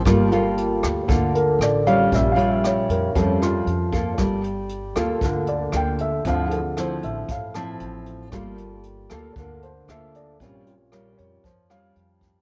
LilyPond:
<<
  \new Staff \with { instrumentName = "Grand piano" } { \time 4/4 \key g \dorian \tempo 4 = 116 << { r2 r8 bes'8 d''8 f''8 | \tuplet 3/2 { e''8 f''8 e''8 } des''8 bes'8 a'8 f'8 r4 | r4. a'8 bes'8 d''8 g''8 e''8 | f''8 <aes' a'>8 c''8 e''8 f''8 a''8 r4 |
r4. a'8 bes'8 c''8 e''8 d''8 | des''8 f'8 bes'8 des''8 c''8 f''8 r4 | } \\ { <bes f'>4. r2 r8 | <g des'>8 r4. <g c' des'>8 r4. | r4. <bes f'>2~ <bes f'>8 | <f c' e'>4. r2 r8 |
<bes f'>8 r2. r8 | <g c' des'>8 r2. r8 | } >> }
  \new Staff \with { instrumentName = "Nylon-string guitar" } { \time 4/4 \key g \dorian << { <bes f' a'>8 <bes f' a'>4. <bes f' a'>4. <g des' f'>8~ | <g des' f'>8 <g des' f'>4. <g des' f'>4 r8 <bes f' a'>8~ | <bes f' a'>8 r4 <bes f' a'>4. <bes f' a'>8 r8 | <f c' e'>8 r8 <f c' e'>4 r8 <f c' e'>4. |
<bes f' a'>4 r8 <bes f' a'>8 <bes f' a'>8 r8 <bes f' a'>4 | <g des' f'>8 r8 <g des' f'>4 r8 <g des' f'>4. | } \\ { g2 d2 | bes,2 f2 | g2 d2 | d2 a,2 |
g2 d2 | bes,2 f2 | } >> }
  \new Staff \with { instrumentName = "Upright bass" } { \clef bass \time 4/4 \key g \dorian g,,4. d,8 d,4 a,,4 | bes,,4. f,8 f,4 f,4 | g,,4. d,8 d,4 d,4 | d,4. a,,8 a,,4 a,,4 |
g,,4. d,8 d,4 d,4 | bes,,4. f,8 f,4 f,4 | }
  \new DrumStaff \with { instrumentName = "Drums" } \drummode { \time 4/4 <hh bd ss>8 hh8 hh8 <hh ss>8 <hh bd>8 hh8 <hh ss>8 hh8 | <hh bd>8 hh8 <hh ss>8 hh8 <hh bd>8 <hh ss>8 hh8 <hh bd>8 | <hh bd ss>8 hh8 hh8 <hh ss>8 <hh bd>8 hh8 <hh ss>8 hh8 | <hh bd>8 hh8 <hh ss>8 hh8 <hh bd>8 <hh ss>8 hh8 hh8 |
<hh bd ss>8 hh8 hh8 <hh ss>8 <hh bd>8 hh8 <hh ss>8 hh8 | <hh bd>8 hh8 <hh ss>8 hh8 <hh bd>8 <hh ss>8 hh8 <hh bd>8 | }
>>